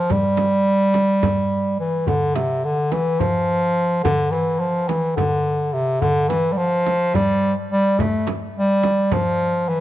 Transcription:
0.00 0.13 F3 medium
0.10 1.79 G3 loud
0.10 frame drum medium
0.10 darbuka dum medium
0.24 darbuka ka soft
0.37 darbuka tek medium
0.37 frame drum medium
0.81 darbuka ka soft
0.94 darbuka tek medium
0.94 frame drum medium
1.23 frame drum medium
1.23 darbuka dum medium
1.80 2.09 E3 medium
2.07 2.37 D3 medium
2.07 darbuka dum medium
2.07 frame drum medium
2.35 2.66 C3 medium
2.35 darbuka tek medium
2.35 frame drum medium
2.64 2.93 D3 medium
2.92 3.22 E3 medium
2.92 darbuka tek medium
2.92 frame drum medium
3.20 4.03 F3 medium
3.20 darbuka dum medium
3.20 frame drum medium
4.03 4.33 D3 medium
4.03 frame drum medium
4.03 darbuka dum loud
4.31 4.61 E3 medium
4.31 darbuka tek medium
4.59 4.90 F3 medium
4.88 5.15 E3 medium
4.88 darbuka tek medium
4.88 frame drum medium
5.16 5.74 D3 medium
5.16 darbuka dum medium
5.16 frame drum medium
5.73 6.02 C3 medium
6.01 6.30 D3 medium
6.01 darbuka dum medium
6.01 frame drum medium
6.28 6.54 E3 medium
6.28 frame drum medium
6.52 6.59 G3 medium
6.57 7.16 F3 medium
6.86 darbuka tek medium
6.86 frame drum medium
7.14 7.54 G3 loud
7.14 darbuka dum medium
7.14 frame drum medium
7.71 8.01 G3 medium
7.99 8.27 A3 medium
7.99 darbuka dum medium
7.99 frame drum medium
8.13 darbuka ka soft
8.27 darbuka tek medium
8.27 frame drum medium
8.57 9.14 G3 loud
8.83 darbuka tek medium
8.83 frame drum medium
9.11 9.70 F3 loud
9.11 darbuka dum medium
9.11 frame drum medium
9.68 9.80 E3 medium

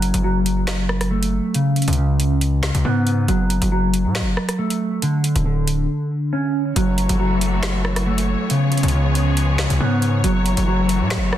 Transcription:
0.00 0.12 F#1 loud
0.00 0.23 F#3 medium
0.00 closed hi-hat medium
0.14 1.40 F#1 loud
0.14 closed hi-hat medium
0.24 1.54 F#3 medium
0.46 closed hi-hat medium
0.67 finger snap loud
0.67 snare loud
0.67 closed hi-hat medium
0.89 cross-stick medium
1.01 cross-stick medium
1.01 closed hi-hat medium
1.11 1.54 A3 medium
1.23 closed hi-hat medium
1.54 1.96 C#3 medium
1.54 closed hi-hat medium
1.76 closed hi-hat soft
1.82 closed hi-hat medium
1.88 2.71 C#2 loud
1.88 closed hi-hat medium
1.93 closed hi-hat medium
1.98 3.28 C#3 medium
2.20 closed hi-hat medium
2.41 closed hi-hat medium
2.63 finger snap medium
2.63 snare loud
2.75 2.84 C#2 loud
2.75 closed hi-hat medium
2.85 3.27 G#2 loud
2.85 3.28 B3 medium
3.07 closed hi-hat medium
3.28 3.60 F#1 loud
3.28 3.70 F#3 medium
3.28 closed hi-hat medium
3.50 closed hi-hat medium
3.62 4.07 F#1 loud
3.62 closed hi-hat medium
3.72 5.02 F#3 medium
3.94 closed hi-hat medium
4.05 4.23 A2 loud
4.15 finger snap loud
4.15 snare loud
4.15 closed hi-hat medium
4.21 4.36 F#1 loud
4.37 cross-stick medium
4.49 cross-stick medium
4.49 closed hi-hat medium
4.58 5.02 A3 medium
4.70 closed hi-hat medium
5.02 5.44 D3 medium
5.02 closed hi-hat medium
5.24 closed hi-hat medium
5.36 5.87 D1 loud
5.36 closed hi-hat medium
5.46 6.75 D3 medium
5.67 closed hi-hat medium
6.33 6.76 C#4 medium
6.76 7.08 F#1 loud
6.76 8.48 E3 medium
6.76 7.18 F#3 medium
6.76 8.48 A3 medium
6.76 8.48 F#4 medium
6.76 11.38 C#5 medium
6.76 closed hi-hat medium
6.98 closed hi-hat medium
7.09 8.36 F#1 loud
7.09 closed hi-hat medium
7.20 8.50 F#3 medium
7.41 closed hi-hat medium
7.63 finger snap loud
7.63 snare loud
7.63 closed hi-hat medium
7.85 cross-stick medium
7.96 cross-stick medium
7.96 closed hi-hat medium
8.06 8.50 A3 medium
8.18 closed hi-hat medium
8.50 8.92 C#3 medium
8.50 10.22 F3 medium
8.50 10.22 B3 medium
8.50 10.22 G#4 medium
8.50 closed hi-hat medium
8.72 closed hi-hat soft
8.77 closed hi-hat medium
8.83 9.67 C#2 loud
8.83 closed hi-hat medium
8.88 closed hi-hat medium
8.93 10.24 C#3 medium
9.15 closed hi-hat medium
9.37 closed hi-hat medium
9.58 finger snap medium
9.58 snare loud
9.70 9.80 C#2 loud
9.70 closed hi-hat medium
9.80 10.22 G#2 loud
9.80 10.24 B3 medium
10.02 closed hi-hat medium
10.24 10.56 F#1 loud
10.24 11.38 E3 medium
10.24 10.66 F#3 loud
10.24 11.38 A3 medium
10.24 11.38 F#4 medium
10.24 closed hi-hat medium
10.46 closed hi-hat medium
10.57 11.02 F#1 loud
10.57 closed hi-hat medium
10.67 11.38 F#3 medium
10.89 closed hi-hat medium
11.01 11.18 A2 loud
11.10 finger snap loud
11.10 snare loud
11.10 closed hi-hat medium
11.17 11.32 F#1 loud
11.33 cross-stick medium

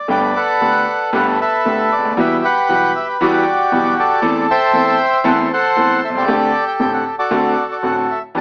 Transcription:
0.08 0.31 G1 medium
0.08 0.30 G2 medium
0.08 0.30 D3 medium
0.08 0.30 A3 medium
0.08 0.31 B3 medium
0.08 0.30 G4 medium
0.08 0.34 B4 medium
0.08 1.10 D5 medium
0.08 0.22 G5 medium
0.36 1.13 A4 medium
0.36 1.13 B4 medium
0.36 1.10 F#5 medium
0.61 0.83 D2 soft
0.61 0.83 D3 soft
0.61 0.83 A3 soft
0.61 0.83 B3 soft
0.61 0.83 G4 soft
1.13 1.35 G1 medium
1.13 1.35 G2 medium
1.13 1.35 D3 medium
1.13 1.35 A3 medium
1.13 1.35 B3 medium
1.13 1.35 G4 medium
1.13 1.40 A4 medium
1.13 1.40 B4 medium
1.13 1.26 F#5 medium
1.41 2.14 A4 medium
1.41 2.14 B4 medium
1.41 1.94 E5 medium
1.65 1.87 D2 medium
1.65 1.87 D3 medium
1.65 1.87 A3 soft
1.65 1.87 B3 soft
1.65 1.87 G4 soft
1.92 2.18 D5 medium
1.98 2.04 C#2 soft
2.05 2.11 D2 medium
2.11 2.17 D#2 medium
2.17 2.39 E2 medium
2.17 2.39 E3 medium
2.17 2.39 G3 medium
2.17 2.39 B3 medium
2.17 2.39 F#4 medium
2.17 3.17 G4 medium
2.17 2.43 B4 medium
2.17 2.45 E5 medium
2.44 3.43 B4 medium
2.44 2.92 F#5 medium
2.69 2.90 B1 medium
2.69 2.91 B2 medium
2.69 2.90 E3 soft
2.69 2.90 G3 soft
2.69 2.91 B3 soft
2.69 2.91 F#4 medium
2.96 3.07 E5 medium
3.21 3.42 E2 medium
3.21 3.42 E3 medium
3.21 3.42 G3 medium
3.21 3.42 B3 medium
3.21 3.42 F#4 medium
3.21 4.20 F#4 medium
3.21 4.20 G4 medium
3.21 3.94 D5 medium
3.72 3.93 B1 medium
3.72 3.93 B2 medium
3.72 3.93 E3 soft
3.72 3.93 G3 soft
3.72 3.93 B3 soft
3.72 3.93 F#4 medium
4.00 4.97 A4 medium
4.00 4.46 D5 medium
4.22 4.44 E2 medium
4.22 4.44 E3 medium
4.22 4.44 A3 medium
4.22 4.44 C4 medium
4.22 4.44 A4 medium
4.50 5.25 C5 medium
4.50 5.48 E5 medium
4.50 5.29 G5 loud
4.73 4.96 E2 medium
4.73 4.95 E3 medium
4.73 4.95 A3 soft
4.73 4.95 C4 soft
4.73 4.95 A4 medium
5.24 5.46 E2 medium
5.24 5.46 E3 medium
5.24 5.47 A3 medium
5.24 5.46 C4 medium
5.24 5.47 A4 medium
5.24 5.52 A4 medium
5.24 5.51 C5 medium
5.24 5.38 F#5 medium
5.53 6.16 A4 medium
5.53 6.25 C5 medium
5.53 6.00 F#5 loud
5.77 5.98 E2 medium
5.77 5.98 E3 medium
5.77 5.98 A3 soft
5.77 5.98 C4 soft
5.77 5.98 A4 medium
6.05 6.10 E5 medium
6.09 6.15 B1 soft
6.15 6.22 C2 medium
6.15 7.16 G4 medium
6.15 7.15 A4 medium
6.15 6.64 D5 medium
6.23 6.28 C#2 medium
6.28 6.50 D2 medium
6.28 6.50 D3 medium
6.28 6.50 A3 medium
6.28 6.50 C4 medium
6.28 6.50 G4 medium
6.68 6.73 G5 medium
6.80 7.01 A1 medium
6.80 7.01 A2 medium
6.80 7.01 D3 soft
6.80 7.01 A3 soft
6.80 7.01 C4 soft
6.80 7.02 G4 medium
6.80 6.92 G5 medium
6.94 7.05 F#5 medium
7.19 8.19 F#4 medium
7.19 8.19 A4 medium
7.19 7.67 D5 medium
7.31 7.53 D2 medium
7.31 7.53 D3 medium
7.31 7.53 A3 medium
7.31 7.53 C4 medium
7.31 7.53 F#4 medium
7.72 7.77 D5 medium
7.83 8.05 A1 medium
7.83 8.05 A2 soft
7.83 8.05 D3 soft
7.83 8.05 A3 soft
7.83 8.05 C4 soft
7.83 8.05 F#4 soft
7.83 7.96 F#5 medium
8.11 8.22 E5 medium
8.35 8.41 E2 medium
8.35 8.41 E3 medium
8.35 8.41 B3 medium
8.35 8.41 D4 medium
8.35 8.41 G4 medium
8.35 8.41 D5 medium
8.35 8.41 A5 medium

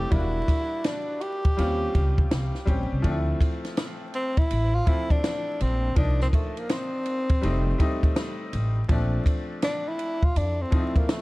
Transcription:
0.00 0.13 G4 loud
0.11 0.39 E1 medium
0.11 1.40 G3 medium
0.11 1.40 A#3 medium
0.11 1.41 D4 medium
0.11 0.87 E4 loud
0.11 0.21 F4 medium
0.11 kick loud
0.11 ride medium
0.20 1.45 F#4 medium
0.48 kick medium
0.48 ride medium
0.84 1.24 D4 medium
0.84 snare loud
0.84 hi-hat pedal medium
0.84 ride medium
1.21 2.68 G4 loud
1.21 ride soft
1.45 kick medium
1.45 ride soft
1.57 1.86 D#2 medium
1.57 2.56 G3 medium
1.57 2.56 C4 medium
1.57 2.57 C#4 medium
1.57 2.57 F4 medium
1.57 ride medium
1.95 2.22 C#2 medium
1.95 kick medium
1.95 ride medium
2.18 kick medium
2.31 2.49 C2 medium
2.31 snare loud
2.31 hi-hat pedal medium
2.31 ride medium
2.55 snare soft
2.65 2.86 A#1 medium
2.65 2.99 G3 medium
2.65 3.00 C4 medium
2.65 3.00 C#4 medium
2.65 3.01 G4 medium
2.65 kick medium
2.65 ride medium
2.92 3.01 C2 medium
3.02 3.32 D2 loud
3.02 4.32 F3 medium
3.02 4.32 A3 medium
3.02 4.33 C4 medium
3.02 3.13 D4 medium
3.02 kick loud
3.02 ride medium
3.12 4.37 E4 loud
3.41 kick medium
3.41 ride medium
3.65 snare soft
3.65 ride soft
3.77 snare loud
3.77 hi-hat pedal medium
3.77 ride medium
4.14 4.40 C4 medium
4.14 ride soft
4.37 4.77 E4 medium
4.37 kick medium
4.37 ride soft
4.51 4.79 A1 medium
4.51 ride medium
4.75 4.90 F4 medium
4.85 5.85 F3 medium
4.85 5.85 A3 medium
4.85 5.86 C4 medium
4.85 5.13 E4 loud
4.85 5.86 E4 medium
4.85 kick medium
4.85 ride medium
5.10 5.63 D4 medium
5.10 kick medium
5.10 ride soft
5.24 snare loud
5.24 hi-hat pedal medium
5.24 ride medium
5.61 5.88 A#1 medium
5.61 5.98 C4 medium
5.61 ride medium
5.95 6.24 C2 loud
5.95 7.25 F3 medium
5.95 7.25 A#3 medium
5.95 7.26 D4 medium
5.95 6.20 D4 medium
5.95 7.26 D#4 medium
5.95 kick loud
5.95 ride medium
6.20 6.28 C4 medium
6.20 snare soft
6.33 6.60 A3 medium
6.33 kick medium
6.33 ride medium
6.57 6.73 A#3 medium
6.57 ride soft
6.69 8.54 C4 medium
6.69 snare loud
6.69 hi-hat pedal medium
6.69 ride medium
7.06 ride soft
7.29 kick medium
7.29 ride medium
7.41 7.71 F1 loud
7.41 7.75 G3 medium
7.41 7.76 A3 medium
7.41 7.76 C4 medium
7.41 7.77 D#4 medium
7.41 ride medium
7.78 8.77 G3 medium
7.78 8.78 A3 medium
7.78 8.79 C4 medium
7.78 8.79 D#4 loud
7.78 kick medium
7.78 ride medium
8.03 kick medium
8.03 ride soft
8.16 snare loud
8.16 hi-hat pedal medium
8.16 ride medium
8.53 8.81 A1 medium
8.53 ride medium
8.89 9.17 A#1 loud
8.89 10.18 F3 medium
8.89 10.18 A3 medium
8.89 10.19 C4 medium
8.89 10.19 D4 medium
8.89 kick loud
8.89 ride medium
9.26 kick medium
9.26 ride medium
9.62 9.90 D4 loud
9.62 snare loud
9.62 hi-hat pedal medium
9.62 ride medium
9.89 10.26 E4 loud
9.99 ride medium
10.23 10.39 F4 medium
10.23 kick medium
10.36 10.64 F2 medium
10.36 10.63 D4 loud
10.36 ride medium
10.62 10.99 C4 medium
10.71 11.21 F3 medium
10.71 11.21 A3 medium
10.71 11.21 C4 medium
10.71 10.82 D#4 medium
10.71 kick medium
10.71 ride medium
10.80 11.21 E4 medium
10.96 11.12 A#3 medium
10.96 kick medium
10.96 ride soft
11.09 11.21 A3 medium
11.09 snare loud
11.09 hi-hat pedal medium
11.09 ride medium

